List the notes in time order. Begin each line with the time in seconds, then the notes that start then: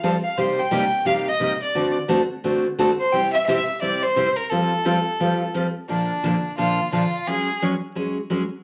0.03 F3 G3 C4 F4 A4
0.24 F5
0.37 C3 G3 A#3 D#4 G4 C5
0.60 G5
0.71 C3 G3 A#3 D#4 G4
1.05 C3 G3 A#3 D#4 G4 F5
1.28 D#5
1.40 C3 G3 A#3 D#4 G4
1.63 D5
1.75 D3 A3 C4 F#4 A4
2.08 D3 A3 C4 F#4 A4
2.44 D3 A3 C4 F#4 A4
2.79 D3 A3 C4 F#4 A4
3.00 C5
3.13 C3 G3 C4 E4 G4 G5
3.33 E5
3.47 C3 G3 C4 E4 G4 E5
3.82 C3 G3 C4 E4 G4 D5
4.03 C5
4.16 C3 G3 C4 E4 G4
4.36 A#4
4.49 F3 G3 C4 F4 A4
4.85 F3 G3 C4 F4 A4
5.20 F3 G3 C4 F4 A4
5.54 F3 G3 C4 F4 A4
5.88 A#2 D3 F3 A#3 D4 A4
6.23 A#2 D3 F3 A#3 D4 A4
6.57 A#2 D3 F3 A#3 D4 F4 A4
6.92 A#2 D3 F3 A#3 D4 F4 A4
7.27 F#3 G#3 C#4 G#4 C#5
7.62 F#3 G#3 C#4 G#4 C#5
7.95 F#3 G#3 C#4 G#4 C#5
8.30 F#3 G#3 C#4 G#4 C#5